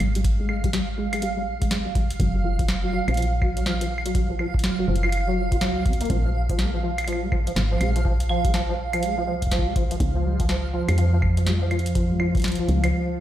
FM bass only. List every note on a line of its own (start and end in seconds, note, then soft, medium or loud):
0.00 1.48 G#1 medium
1.47 2.16 A#1 loud
2.20 3.02 F#1 loud
3.08 4.56 A#1 medium
4.54 4.84 F#1 loud
4.88 5.63 F#1 medium
5.61 6.06 C#2 medium
6.10 7.53 A#1 loud
7.56 7.76 G#1 loud
7.81 9.28 A#1 medium
9.27 9.97 C2 medium
10.00 10.83 C#2 loud
10.88 12.36 F2 medium
12.35 12.65 C#2 medium
12.69 12.93 C#2 medium